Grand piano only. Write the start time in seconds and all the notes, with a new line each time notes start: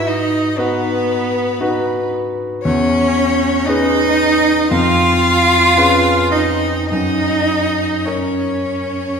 Already playing: G#2 D#4 F#4 B4
0.58 D#4 F#4 B4
1.61 D#4 F#4 B4
2.65 E2
3.67 C#4 G#4 B4
4.71 F2
5.76 C#4 G#4 B4
6.92 F#2
8.06 C#4 A#4 C#5